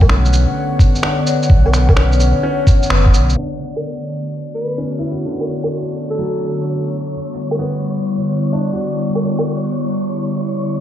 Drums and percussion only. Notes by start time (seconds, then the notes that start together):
0.01 kick, low woodblock
0.09 finger snap
0.25 shaker
0.33 shaker
0.79 kick, shaker
0.95 shaker
1.03 finger snap
1.27 shaker
1.43 shaker
1.50 kick
1.66 low woodblock
1.74 finger snap, shaker
1.89 kick, low woodblock
1.97 finger snap
2.12 shaker
2.20 shaker
2.67 kick, shaker
2.83 shaker
2.90 finger snap
3.06 kick
3.14 shaker
3.29 shaker
3.76 low woodblock
5.40 low woodblock
5.64 low woodblock
7.51 low woodblock
9.15 low woodblock
9.39 low woodblock